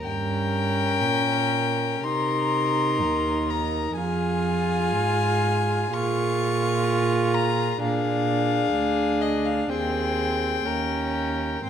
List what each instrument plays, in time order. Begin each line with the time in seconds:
0.03 cello G2, viola C#4, violin A#4 G5
1.01 cello A#2
2.03 cello C3, viola D#4, violin A#4 C6
3.01 cello D#2
3.50 violin A#5
3.96 cello F2, viola F4, violin G#4 G#5
4.92 cello G#2
5.93 cello A#2, viola F4, violin G#4 C#6
7.34 violin A#5
7.82 cello A#2, viola D4, violin G#4 F5
8.76 cello D2
9.21 violin D#5
9.45 violin F5
9.69 cello D#2, viola C4, violin G#4 G5
10.65 cello D#2, viola C#4, violin A#4
11.65 cello G#2, viola C4, violin C5 G5